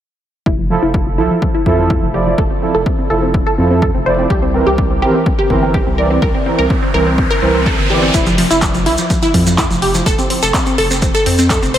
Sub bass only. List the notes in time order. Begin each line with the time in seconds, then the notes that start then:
0.46 F1
0.83 F1
1.18 C2
1.66 F2
2.03 F1
2.38 F1
2.75 F1
3.10 F1
3.58 F2
3.95 F1
4.30 C2
4.67 C2
5.02 G1
5.50 G1
5.87 C2
6.22 C2
6.59 C2
6.94 C2
7.42 C2
7.79 G1
8.14 F1
8.51 F1
8.86 C2
9.34 F2
9.71 F1
10.06 F1
10.43 F1
10.78 F1
11.26 F2
11.63 F1